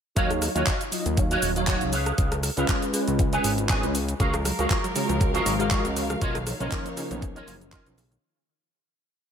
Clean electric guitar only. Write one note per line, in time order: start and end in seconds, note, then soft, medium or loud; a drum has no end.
0.16 0.30 F#4 loud
0.16 0.30 C#5 loud
0.16 0.30 D#5 loud
0.16 0.30 F5 loud
0.42 muted clean electric guitar stroke soft
0.55 0.80 F#4 medium
0.55 0.80 C#5 medium
0.55 0.81 D#5 medium
0.55 0.81 F5 loud
1.06 muted clean electric guitar stroke soft
1.17 muted clean electric guitar stroke medium
1.31 1.49 F#4 loud
1.31 1.49 C#5 medium
1.31 1.49 D#5 loud
1.31 1.50 F5 loud
1.67 1.81 F#4 medium
1.67 1.81 C#5 medium
1.67 1.81 D#5 medium
1.67 1.82 F#5 loud
1.93 2.34 G#4 medium
1.93 2.34 B4 medium
1.93 2.34 C#5 medium
1.93 2.34 F5 loud
2.44 muted clean electric guitar stroke soft
2.57 2.82 G#4 medium
2.57 2.82 B4 medium
2.57 2.82 C#5 medium
2.57 2.83 F5 loud
3.07 muted clean electric guitar stroke soft
3.19 muted clean electric guitar stroke medium
3.33 3.51 G#4 loud
3.33 3.51 B4 medium
3.33 3.51 C#5 loud
3.33 3.51 G#5 loud
3.69 3.83 G#4 medium
3.69 3.83 B4 medium
3.69 3.83 C#5 medium
3.69 3.83 G#5 loud
3.94 muted clean electric guitar stroke soft
4.19 4.33 F#4 loud
4.19 4.33 G#4 loud
4.19 4.33 A#4 medium
4.19 4.34 F5 loud
4.45 muted clean electric guitar stroke soft
4.59 4.84 F#4 medium
4.59 4.84 G#4 medium
4.59 4.84 A#4 medium
4.59 4.84 F5 loud
5.09 muted clean electric guitar stroke soft
5.20 muted clean electric guitar stroke medium
5.34 5.53 F#4 loud
5.34 5.53 G#4 loud
5.34 5.53 A#4 loud
5.34 5.53 F5 loud
5.70 5.85 F#4 medium
5.70 5.85 G#4 medium
5.70 5.85 A#4 medium
5.70 5.85 F5 loud
5.96 muted clean electric guitar stroke soft
6.21 6.35 F4 loud
6.21 6.35 A#4 medium
6.21 6.35 C#5 loud
6.21 6.35 D#5 loud
6.47 muted clean electric guitar stroke soft
6.60 6.85 F4 medium
6.60 6.86 A#4 medium
6.60 6.86 C#5 medium
6.60 6.86 D#5 loud
7.10 muted clean electric guitar stroke soft
7.22 muted clean electric guitar stroke medium
7.35 7.54 F4 loud
7.35 7.54 A#4 loud
7.35 7.54 C#5 loud
7.35 7.54 D#5 loud
7.72 7.86 F4 medium
7.72 7.86 A#4 medium
7.72 7.86 C#5 medium
7.72 7.86 D#5 medium
7.97 muted clean electric guitar stroke soft